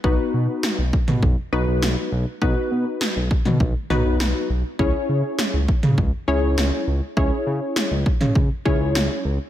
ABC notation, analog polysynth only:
X:1
M:4/4
L:1/8
Q:1/4=101
K:Bmix
V:1 name="Analog polysynth"
[B,DFB]3 z2 [B,DFB]2 z | [B,DFB]3 z2 [B,DFB]2 z | [CEGc]3 z2 [CEGc]2 z | [CEGc]3 z2 [CEGc]2 z |]